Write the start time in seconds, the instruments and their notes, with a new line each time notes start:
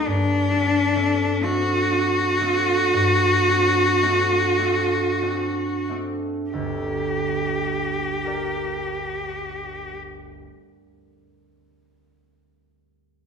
Already playing: harp G3 A#3 D4
0.07 harp G2, cello D4
0.51 harp C4 D4
0.96 harp A3 C4 D4
1.43 harp A3 C4 D4, cello F#4
1.91 harp C4 D4
2.41 harp A3 C4 D4
2.94 harp G2
3.47 harp C4 D4
4.02 harp A3 C4 D4
4.59 harp A3 C4 D4
5.22 harp C4 D4
5.89 harp A3 C4 D4
6.51 harp G1 D2, cello G4
8.24 harp G4 A#4 D5